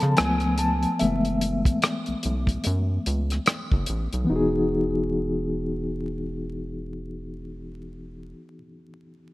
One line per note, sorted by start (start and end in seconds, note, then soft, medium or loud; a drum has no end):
0.00 0.15 C#3 medium
0.00 0.14 F3 medium
0.00 0.14 B3 medium
0.00 0.14 A4 soft
0.00 0.19 A5 medium
0.00 0.18 B5 medium
0.00 cross-stick soft
0.00 closed hi-hat soft
0.17 0.86 C#2 medium
0.17 0.96 F3 medium
0.17 0.96 A3 soft
0.17 0.96 B3 medium
0.17 0.60 G#5 medium
0.17 cross-stick loud
0.17 closed hi-hat medium
0.40 closed hi-hat soft
0.58 0.97 A5 medium
0.58 closed hi-hat medium
0.83 closed hi-hat soft
0.99 1.68 F#1 medium
0.99 2.19 E3 soft
0.99 2.19 G#3 soft
0.99 2.19 A3 soft
0.99 2.19 B3 soft
0.99 3.42 E5 medium
0.99 closed hi-hat medium
1.25 closed hi-hat soft
1.41 closed hi-hat medium
1.65 kick medium
1.65 closed hi-hat soft
1.82 cross-stick medium
1.82 closed hi-hat medium
2.06 2.15 B1 soft
2.06 closed hi-hat soft
2.23 2.58 B1 medium
2.23 closed hi-hat soft
2.47 kick medium
2.47 closed hi-hat soft
2.64 2.99 F#2 medium
2.64 closed hi-hat medium
3.06 3.39 C#2 medium
3.06 closed hi-hat medium
3.30 cross-stick soft
3.30 closed hi-hat soft
3.46 cross-stick loud
3.46 closed hi-hat medium
3.72 3.85 F#1 medium
3.72 kick medium
3.86 4.08 A1 medium
3.86 closed hi-hat medium
4.13 4.26 B1 medium
4.13 closed hi-hat soft
4.24 8.57 E3 medium
4.24 8.59 B3 medium
4.30 8.34 E1 medium
4.30 8.62 D#4 medium
4.30 8.65 F#4 soft
4.36 8.68 G#4 medium